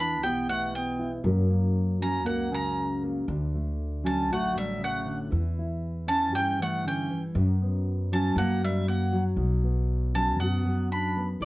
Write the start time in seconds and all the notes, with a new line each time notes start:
Already playing: E2 E3 B3 E4
0.00 D4 B5
0.23 B1 B3 G4 G5
0.47 B2 A3 F#5
0.75 B3 G5
0.99 E4
1.24 F#2 F#3 A#3 C#4 A#4
1.50 A#3
2.01 F#3 C#4 A#5
2.24 C#2 A#3 A#4 F#5
2.50 C#3 C#4 A#5
3.03 A#3
3.28 D2 D3
3.55 A3
4.04 F#3 C#4 A5
4.31 A1 A3 F#4 F#5
4.54 A2 E5
4.59 G3
4.78 C#3
4.83 A3 F#5
5.06 D3
5.30 E2 E3
5.58 E4
6.07 C#4 A5
6.33 G2 C#4 G4 G5
6.59 E3 A3 F#5
6.84 D3 C#4 G5
7.09 E3
7.35 F#2
7.62 B3
8.12 F#3 C#4 A5
8.36 F#2 A#3 F#5
8.63 G3 A#3 E5
8.88 A#3 F#5
9.13 F#3
9.37 B1 B2
9.64 B3
10.15 F#3 C#4 A5
10.39 F#2 B3 F#4 F#5
10.65 F#2
10.91 D4 B5
11.16 B3
11.40 B1 D5